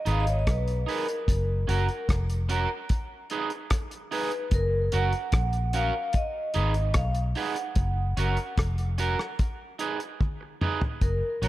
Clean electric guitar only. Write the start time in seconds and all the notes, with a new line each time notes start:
0.05 D#4 G#4 B4
0.26 muted clean electric guitar stroke
0.86 D#4 G#4 B4
1.67 C#4 F#4 A#4
2.49 C#4 F#4 A#4
3.31 D#4 G#4 B4
4.11 D#4 G#4 B4
4.92 C#4 F#4 A#4
5.74 C#4 F#4 A#4
6.54 D#4 G#4 B4
6.75 muted clean electric guitar stroke
7.36 D#4 G#4 B4
8.17 C#4 F#4 A#4
8.98 C#4 F#4 A#4
9.79 D#4 G#4 B4
10.41 muted clean electric guitar stroke
10.61 D#4 G#4 B4
11.42 C#4 F#4 A#4